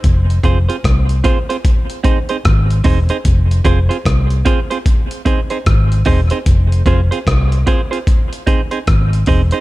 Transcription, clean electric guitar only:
X:1
M:4/4
L:1/16
Q:"Swing 16ths" 1/4=75
K:Fm
V:1 name="Clean electric guitar"
z2 [CFAc] [CFAc] z2 [CFAc] [CFAc] z2 [CEAc] [CEAc] z2 [CEAc] [CEAc] | z2 [CFAc] [CFAc] z2 [CFAc] [CFAc] z2 [CEAc] [CEAc] z2 [CEAc] [CEAc] | z2 [CFAc] [CFAc] z2 [CFAc] [CFAc] z2 [CEAc] [CEAc] z2 [CEAc] [CEAc] |]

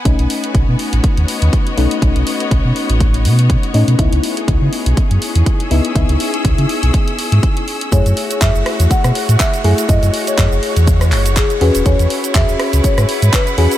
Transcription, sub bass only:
X:1
M:4/4
L:1/16
Q:"Swing 16ths" 1/4=122
K:F#dor
V:1 name="Sub bass" clef=bass
B,,, B,,, z2 B,,, B,, z A,,, z D,, z D,, z2 B,,, z | B,,, B,,, z2 B,,, B,, z A,,,3 B,,3 z A,, B,, | C,, C,, z2 C,, C, z B,,, z F,, z E,, z2 C,, z | C,, C,, z2 C,, C, z B,,, z3 G,, z4 |
F,, F,, z2 F,, F,,, z E,, z B,, z A,, z2 F,, z | F,, F,, z2 F,, F,,, z E,,3 F,,,3 z E,, E,,, | E,, E,, z2 E,, E,,, z C,, z G,, z G,, z2 E,, z |]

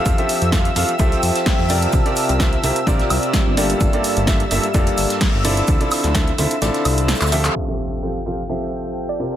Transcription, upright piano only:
X:1
M:4/4
L:1/16
Q:"Swing 16ths" 1/4=128
K:Cmix
V:1 name="Upright piano"
[F,CFGAf] [F,CFGAe]3 [F,CFGAf] z [F,CFGAf] z [F,CFGAe]6 [C,CFGBd]2- | [C,CFGBd] [C,CFGBd]3 [C,CFGBe] z [C,CFGBe] z [C,CFGBd]6 [G,,B,FGAd]2- | [G,,B,FGAd] [G,,B,FGAd]3 [G,,B,FGAe] z [G,,B,FGAe] z [G,,B,FGAd]6 [D,CEFAd]2- | [D,CEFAd] [D,CEFAd]3 [D,CEFAe] z [D,CEFAe] z [D,CEFAd]6 [F,CFGAe]2- |
[F,CFGAe] [F,CFGAe]3 [F,CFGAf] z [F,CFGAf] z [F,CFGAe]6 [C,CFGBd]2 |]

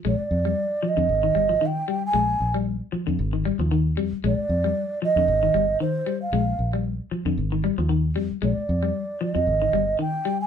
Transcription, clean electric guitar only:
X:1
M:4/4
L:1/16
Q:"Swing 16ths" 1/4=115
K:Bbmix
V:1 name="Clean electric guitar" clef=bass
A,2 z G,2 z F, D,2 E, G, F, E,2 G,2 | A,2 z G,2 z F, D,2 E, G, F, E,2 G,2 | A,2 z G,2 z F, D,2 E, G, z E,2 G,2 | A,2 z G,2 z F, D,2 E, G, F, E,2 G,2 |
A,2 z G,2 z F, F,2 E, G, z E,2 G,2 |]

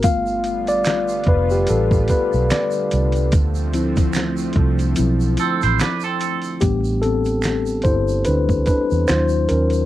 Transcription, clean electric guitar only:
X:1
M:4/4
L:1/16
Q:"Swing 16ths" 1/4=73
K:Ddor
V:1 name="Clean electric guitar"
z16 | z8 z2 [CA] [Ec] [DB] [CA]3 | z16 |]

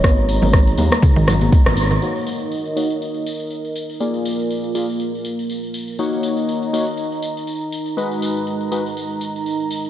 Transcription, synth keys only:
X:1
M:4/4
L:1/8
Q:"Swing 16ths" 1/4=121
K:Ebm
V:1 name="Synth keys"
z8 | [B,EGd]3 [B,EGd] z4 | [B,FA=d]3 [B,FAd] z4 | [B,EGd]3 [B,EGd] z4 |
[A,EGc]3 [A,EGc] z4 |]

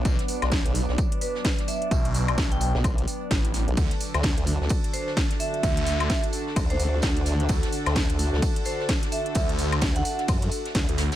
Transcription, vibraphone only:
X:1
M:4/4
L:1/16
Q:"Swing 16ths" 1/4=129
K:Ddor
V:1 name="Vibraphone"
z8 z2 B z3 e2- | e z4 g g z8 z | z8 z2 c z3 e2- | e e4 z4 c c z4 z |
z8 z2 c z3 e2- | e z4 ^f f z8 z |]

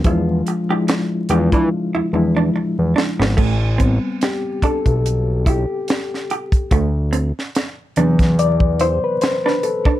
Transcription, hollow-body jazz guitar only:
X:1
M:4/4
L:1/16
Q:"Swing 16ths" 1/4=72
K:Em
V:1 name="Hollow-body jazz guitar"
E z2 G z2 G D z E z D z2 D B, | A, z C z3 D z3 E z3 G z | A, z C z3 D z3 E z2 D z D |]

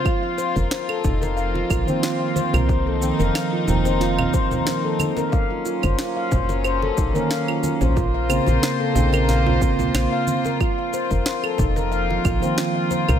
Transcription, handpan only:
X:1
M:4/4
L:1/16
Q:"Swing 16ths" 1/4=91
K:none
V:1 name="Handpan"
F f c _B c A _E B f F F c F f c B | c A _E _B f F F c F f c B c A E B | f F F c F f c _B c A _E B f F F c | F f c _B c A _E B f F C F c f C B |
F f c _B c A _E B f F F c F f c B |]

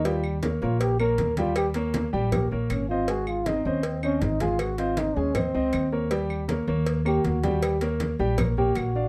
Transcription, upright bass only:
X:1
M:4/4
L:1/8
Q:1/4=158
K:Ebmix
V:1 name="Upright bass" clef=bass
E,,3 B,,,3 E,,2- | E,,3 B,,,2 B,,, A,,,2- | A,,,3 E,,3 A,,,2- | A,,,3 E,,2 D,, E,,2- |
E,,3 E,,3 E,,2- | E,,3 B,,,3 B,,,2 |]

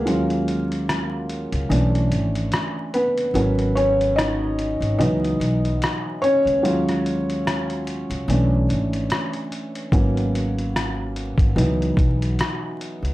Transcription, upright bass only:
X:1
M:4/4
L:1/16
Q:"Swing 16ths" 1/4=73
K:G#m
V:1 name="Upright bass" clef=bass
D,,6- D,, C,, B,,,2 G,,,2 z4 | G,,,6- G,,, G,,, C,,2 B,,,2 z3 C,, | D,,6- D,, C,, B,,,2 G,,,2 z4 | G,,,6- G,,, G,,, C,,2 B,,,2 z3 C,, |]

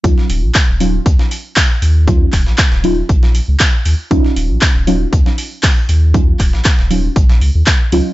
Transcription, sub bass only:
X:1
M:4/4
L:1/16
Q:"Swing 16ths" 1/4=118
K:Ebm
V:1 name="Sub bass" clef=bass
E,, z E,,, B,,, z E,,,2 z E,, z4 z E,,2- | E,, z E,,, B,,, z E,,,2 z B,,,2 z D,, z2 E,, z | E,, z E,,, B,,, z E,,,2 z E,, z4 z E,,2- | E,, z E,,, B,,, z E,,,2 z B,,,2 D,, E,, z2 D,, z |]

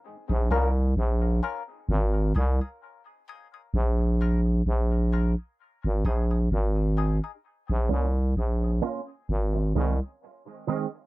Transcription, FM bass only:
X:1
M:4/4
L:1/16
Q:"Swing 16ths" 1/4=65
K:Bbm
V:1 name="FM bass" clef=bass
z B,,, C,,2 B,,,2 z2 A,,,2 C,, z4 z | B,,,4 B,,,3 z2 A,,, B,,,2 A,,,3 z | z B,,, C,,2 B,,,2 z2 A,,,2 C,, z4 z |]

